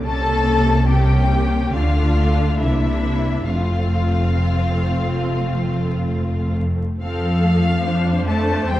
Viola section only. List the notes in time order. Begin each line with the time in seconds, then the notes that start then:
0.06 A#3 C#4
0.90 A#3 C#4
1.75 A3 D4
2.61 A#3 D4
3.49 A3 C4
7.01 C4 A4
7.44 A3
7.85 D4 C5
8.68 C4